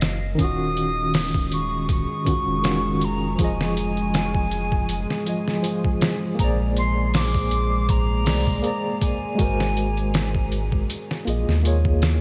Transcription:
0.00 0.36 F#1 loud
0.00 snare loud
0.00 closed hi-hat medium
0.35 2.06 D#1 medium
0.35 2.21 D#3 loud
0.35 2.22 C#4 medium
0.35 kick loud
0.35 closed hi-hat medium
0.40 12.21 G#3 medium
0.40 2.24 F4 medium
0.40 12.21 G#4 medium
0.40 1.48 D#6 loud
0.44 2.25 F#4 loud
0.77 closed hi-hat medium
1.14 snare loud
1.14 open hi-hat medium
1.34 kick medium
1.52 1.87 C#6 loud
1.52 closed hi-hat medium
1.89 3.06 C#6 loud
1.89 kick loud
1.89 closed hi-hat medium
2.25 2.59 D#3 medium
2.25 2.60 C#4 medium
2.25 2.61 F4 medium
2.25 kick loud
2.25 closed hi-hat medium
2.29 2.61 F#4 medium
2.47 3.36 F1 medium
2.62 3.34 D#3 medium
2.62 3.35 C#4 medium
2.62 3.36 F4 medium
2.62 snare loud
2.62 closed hi-hat medium
2.67 3.37 F#4 medium
3.01 3.40 A#5 loud
3.01 closed hi-hat medium
3.35 5.06 F1 loud
3.35 5.21 F3 loud
3.35 5.22 F4 medium
3.35 kick loud
3.35 closed hi-hat medium
3.41 5.24 G#4 medium
3.41 5.25 D#5 loud
3.41 5.61 G#5 loud
3.61 snare medium
3.77 closed hi-hat medium
3.97 closed hi-hat soft
4.14 snare loud
4.14 closed hi-hat medium
4.34 kick medium
4.51 closed hi-hat medium
4.72 kick medium
4.89 closed hi-hat loud
5.10 snare soft
5.25 5.59 F3 medium
5.25 5.60 F4 medium
5.25 5.61 G#4 medium
5.25 closed hi-hat medium
5.29 5.62 D#5 medium
5.48 snare soft
5.63 6.34 F3 medium
5.63 6.35 F4 medium
5.63 6.36 G#4 medium
5.63 closed hi-hat medium
5.67 6.37 C5 medium
5.85 kick medium
6.01 snare loud
6.01 closed hi-hat medium
6.35 8.20 A#3 loud
6.35 8.22 G#4 medium
6.39 8.29 A#1 loud
6.39 8.24 C5 loud
6.39 6.48 A#5 loud
6.39 kick loud
6.39 closed hi-hat medium
6.44 8.25 D5 loud
6.76 7.12 C6 loud
6.76 closed hi-hat medium
7.14 7.91 D6 loud
7.14 snare loud
7.14 open hi-hat medium
7.35 kick medium
7.51 closed hi-hat medium
7.89 8.64 A#5 loud
7.89 kick loud
7.89 closed hi-hat medium
8.25 8.60 C2 loud
8.25 8.59 A#3 medium
8.25 8.60 G#4 medium
8.25 8.61 C5 medium
8.25 snare loud
8.25 open hi-hat medium
8.29 8.61 D5 medium
8.47 kick medium
8.62 9.34 A#3 medium
8.62 9.35 G#4 medium
8.62 9.36 C5 medium
8.62 9.04 A#5 loud
8.62 closed hi-hat medium
8.67 9.37 D5 medium
9.01 10.52 G#5 loud
9.01 kick loud
9.01 closed hi-hat medium
9.35 10.86 G#1 loud
9.35 10.85 G#3 loud
9.35 10.87 F#4 medium
9.35 kick loud
9.35 closed hi-hat medium
9.41 10.88 A#4 medium
9.41 10.90 C5 loud
9.60 snare medium
9.77 closed hi-hat medium
9.97 closed hi-hat soft
10.14 snare loud
10.14 closed hi-hat medium
10.35 kick medium
10.52 closed hi-hat medium
10.72 kick medium
10.90 closed hi-hat medium
11.11 snare soft
11.25 11.45 A#1 medium
11.25 11.59 A#3 medium
11.25 11.60 F4 medium
11.25 11.61 G#4 medium
11.25 closed hi-hat medium
11.30 11.62 D#5 medium
11.48 12.19 D#2 loud
11.48 snare soft
11.63 12.21 A#3 medium
11.63 12.21 F4 medium
11.63 12.21 G#4 medium
11.63 closed hi-hat medium
11.67 12.21 C#5 medium
11.85 kick medium
12.02 snare loud
12.02 closed hi-hat medium

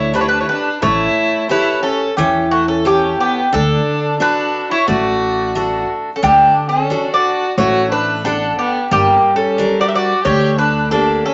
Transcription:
0.00 0.42 D2 medium
0.00 0.13 D3 medium
0.00 0.13 E4 medium
0.00 0.13 C#5 medium
0.14 0.68 D4 soft
0.14 0.21 D4 medium
0.14 0.69 G4 soft
0.14 0.69 B4 medium
0.14 0.21 B4 medium
0.21 0.28 E4 medium
0.21 0.28 C#5 medium
0.28 0.41 D4 medium
0.28 0.40 B4 medium
0.41 0.48 E4 medium
0.41 0.48 C#5 medium
0.49 0.81 D4 medium
0.49 0.82 B4 medium
0.82 1.06 A1 loud
0.82 1.48 A3 medium
0.82 1.46 E4 medium
0.82 1.46 C#5 loud
1.49 1.81 E4 medium
1.49 2.04 G4 soft
1.49 2.04 A4 soft
1.49 1.82 B4 loud
1.49 2.05 C#5 medium
1.82 2.14 C#4 medium
1.82 2.15 A4 medium
2.16 3.12 E2 medium
2.16 2.83 E3 medium
2.16 2.48 C#4 medium
2.16 2.49 G4 medium
2.51 2.67 A3 medium
2.51 2.67 F#4 medium
2.68 2.84 C#4 medium
2.68 2.84 A4 medium
2.85 3.16 C#4 medium
2.85 3.39 G4 medium
2.85 3.17 G4 medium
2.85 3.39 A4 soft
2.85 3.40 C#5 medium
3.19 3.50 B3 medium
3.19 3.53 G4 medium
3.53 3.77 D2 medium
3.53 4.18 D3 medium
3.53 4.16 D4 medium
3.53 4.17 A4 loud
4.19 4.67 D4 medium
4.19 4.74 D4 soft
4.19 4.74 F#4 soft
4.19 4.74 A4 soft
4.19 4.71 B4 loud
4.71 4.87 E4 medium
4.71 4.87 C#5 loud
4.88 5.83 A1 medium
4.88 5.53 A3 medium
4.88 5.85 F#4 medium
4.88 5.85 D5 medium
5.55 6.09 D4 soft
5.55 6.09 F#4 soft
5.55 6.10 A4 soft
6.16 6.22 C#4 medium
6.16 6.23 A4 medium
6.23 6.46 D2 loud
6.23 6.88 D3 medium
6.23 6.66 D4 medium
6.23 6.68 G4 loud
6.69 7.10 C#4 medium
6.69 7.14 A4 medium
6.90 7.44 D4 soft
6.90 7.44 F#4 soft
6.90 7.44 A4 soft
7.13 7.54 F#4 medium
7.13 7.55 D5 loud
7.58 8.51 A1 medium
7.58 8.23 A3 medium
7.58 7.89 F#4 medium
7.58 7.91 C#5 medium
7.91 8.22 D4 medium
7.91 8.26 B4 medium
8.25 8.78 D4 soft
8.25 8.56 D4 medium
8.25 8.56 A4 medium
8.25 8.79 A4 soft
8.25 8.78 F#5 soft
8.58 8.89 B3 medium
8.58 8.91 G4 medium
8.91 9.15 G1 medium
8.91 9.56 G3 medium
8.91 9.33 A#3 medium
8.91 9.33 G4 loud
9.35 9.77 C#4 medium
9.35 9.77 A4 medium
9.58 10.12 G3 soft
9.58 10.12 D4 medium
9.58 10.12 A#4 medium
9.79 9.86 F#4 medium
9.79 9.88 D5 loud
9.87 9.93 G4 medium
9.87 9.95 E5 medium
9.94 10.23 F#4 medium
9.94 10.24 D5 medium
10.23 11.19 D2 loud
10.23 10.90 D3 medium
10.23 10.55 G4 medium
10.23 10.58 C#5 medium
10.57 10.89 D4 medium
10.57 10.89 B4 medium
10.91 11.34 A#3 soft
10.91 11.23 D4 medium
10.91 11.34 D4 soft
10.91 11.34 G4 soft
10.91 11.24 A4 medium
11.25 11.34 C#4 medium
11.25 11.34 A4 medium

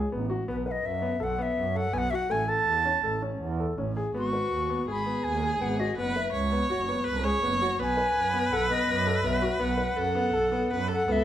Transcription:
0.12 0.45 A1 medium
0.12 0.24 B3 medium
0.30 0.42 F#4 medium
0.48 0.81 B1 medium
0.48 0.60 B3 medium
0.48 0.56 B4 medium
0.66 0.90 B4 medium
0.66 0.72 F#5 medium
0.71 0.87 D#5 medium
0.84 1.18 F#2 loud
0.84 1.25 E5 medium
1.02 1.14 B3 medium
1.20 1.54 B1 medium
1.20 1.32 A4 medium
1.20 1.44 F#5 medium
1.39 1.63 B3 medium
1.39 1.78 E5 loud
1.56 1.90 F#2 loud
1.75 1.87 A4 medium
1.75 1.95 F#5 loud
1.93 2.27 B1 loud
1.93 2.05 B3 medium
1.93 1.99 G#5 loud
1.98 2.12 F#5 loud
2.11 2.24 F#4 medium
2.11 2.16 E5 loud
2.15 2.33 F#5 loud
2.30 2.63 A1 medium
2.30 2.42 A3 medium
2.30 2.50 G#5 loud
2.48 2.73 A4 medium
2.48 3.22 A5 loud
2.66 3.00 E2 medium
2.85 2.97 C#4 medium
3.02 3.37 A1 medium
3.02 3.16 A4 medium
3.22 3.47 C#4 medium
3.40 3.74 E2 loud
3.60 3.72 A4 medium
3.78 4.12 A1 medium
3.78 3.90 C#4 medium
3.97 4.09 G#4 medium
4.14 4.49 G#1 medium
4.14 4.27 B3 medium
4.14 4.84 F#4 medium
4.14 4.86 C#6 loud
4.33 4.58 B4 medium
4.51 4.85 D#2 medium
4.70 4.82 B3 medium
4.87 5.21 G#1 medium
4.87 5.00 G#4 medium
4.87 5.94 G#4 loud
4.87 5.25 B5 loud
5.06 5.30 B3 medium
5.24 5.58 D#2 loud
5.24 5.64 G#5 medium
5.43 5.55 G#4 medium
5.59 5.94 G#1 medium
5.59 5.73 B3 medium
5.59 5.81 F#5 medium
5.80 5.92 F#4 medium
5.80 5.97 D#5 medium
5.97 6.30 F#1 medium
5.97 6.10 B3 medium
5.97 6.31 B4 loud
5.97 6.18 F#5 medium
6.16 6.40 B4 medium
6.16 6.52 E5 medium
6.33 6.67 C#2 loud
6.33 7.06 C#5 loud
6.52 6.64 B3 medium
6.70 7.03 F#1 medium
6.70 6.82 F#4 medium
6.88 7.12 B3 medium
7.04 7.40 C#2 loud
7.04 7.25 B4 loud
7.24 7.36 G#4 medium
7.24 7.81 C#5 loud
7.42 7.76 F#1 loud
7.42 7.55 B3 medium
7.61 7.73 F#4 medium
7.79 8.12 B1 loud
7.79 7.92 B3 medium
7.79 9.98 B4 loud
7.79 8.54 G#5 loud
7.97 8.21 B4 medium
8.14 8.48 F#2 loud
8.34 8.46 B3 medium
8.51 8.85 B1 loud
8.51 8.64 A4 medium
8.51 8.70 F#5 loud
8.70 8.94 B3 medium
8.70 9.21 D#5 medium
8.87 9.21 F#2 loud
9.07 9.19 A4 medium
9.23 9.57 B1 loud
9.23 9.36 B3 medium
9.23 9.62 E5 medium
9.42 9.54 F#4 medium
9.60 9.94 B1 loud
9.60 9.72 B3 medium
9.60 10.90 F#5 loud
9.78 10.02 B4 medium
9.95 10.30 F#2 loud
9.95 10.72 A4 loud
10.15 10.28 B3 medium
10.33 10.67 B1 medium
10.33 10.46 A4 medium
10.52 10.77 B3 medium
10.70 11.05 F#2 loud
10.70 10.90 B4 loud
10.88 11.07 A4 medium
10.88 11.02 A4 medium
10.88 11.14 F#5 loud
11.08 11.24 C#2 loud
11.08 11.21 B3 medium
11.08 11.24 A4 medium
11.12 11.24 E5 medium

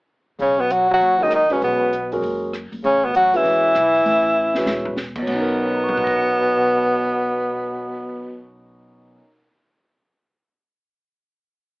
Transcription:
0.39 0.97 B1 medium
0.39 0.61 C#3 medium
0.39 0.62 C#4 medium
0.39 open hi-hat soft
0.60 0.72 B2 medium
0.60 0.74 B3 medium
0.70 0.90 F#3 medium
0.70 0.91 F#4 medium
0.70 closed hi-hat soft
0.91 1.22 F#3 medium
0.91 1.25 F#4 medium
1.01 1.47 F#1 medium
1.01 open hi-hat soft
1.20 1.31 D#3 medium
1.20 1.30 G#3 medium
1.20 1.30 C#4 soft
1.20 1.33 D#4 medium
1.20 1.31 F#4 soft
1.20 1.31 A#4 medium
1.31 1.53 D#3 medium
1.31 cross-stick medium
1.31 closed hi-hat soft
1.36 1.54 D#4 medium
1.50 1.62 C#3 medium
1.50 1.90 G#3 medium
1.50 1.90 C#4 soft
1.50 1.63 C#4 medium
1.50 1.90 F#4 soft
1.50 1.90 B4 medium
1.50 muted upright bass stroke soft
1.50 open hi-hat soft
1.62 2.20 B1 medium
1.62 2.19 B2 medium
1.62 2.20 B3 medium
1.62 open hi-hat soft
1.93 closed hi-hat soft
2.12 2.51 G#3 medium
2.12 2.51 C#4 soft
2.12 2.52 F#4 medium
2.12 2.52 A#4 medium
2.12 open hi-hat soft
2.22 2.68 F#1 medium
2.22 open hi-hat soft
2.53 cross-stick medium
2.53 closed hi-hat soft
2.72 2.83 F#1 medium
2.72 open hi-hat soft
2.84 3.42 A1 medium
2.84 3.06 C#3 medium
2.84 3.06 C#4 medium
2.84 open hi-hat soft
3.05 3.14 B2 medium
3.05 3.15 B3 medium
3.15 3.36 F#3 medium
3.15 3.38 F#4 loud
3.15 closed hi-hat soft
3.33 4.98 E3 medium
3.33 3.73 G#3 soft
3.33 3.73 C#4 medium
3.33 4.99 E4 medium
3.33 3.73 F#4 soft
3.33 3.73 B4 medium
3.33 open hi-hat soft
3.44 3.73 E2 medium
3.44 open hi-hat soft
3.75 4.03 B1 medium
3.75 cross-stick medium
3.75 closed hi-hat soft
3.95 open hi-hat soft
4.05 4.63 A1 medium
4.05 open hi-hat soft
4.55 4.95 G#3 soft
4.55 4.96 C#4 soft
4.55 4.96 F#4 soft
4.55 4.96 B4 medium
4.55 snare soft
4.66 5.12 E1 medium
4.66 snare medium
4.85 floor tom medium
4.97 snare soft
5.15 5.26 A#1 medium
5.15 9.16 B2 medium
5.15 kick medium
5.15 crash medium
5.22 9.19 F#3 medium
5.27 9.17 B1 medium
5.27 8.48 B2 medium
5.27 8.48 B3 medium
5.27 9.22 C#4 soft
5.27 kick soft
5.27 crash medium
5.35 9.25 D#4 medium
5.41 9.28 A#4 medium
5.59 9.18 C#5 soft
5.66 9.22 F#5 soft
5.75 9.26 A#5 soft
5.84 9.31 C#6 soft
5.89 mid tom soft
5.94 9.36 F#6 soft
5.94 floor tom medium
6.04 9.41 A#6 soft
6.04 kick medium
6.16 9.47 C#7 soft

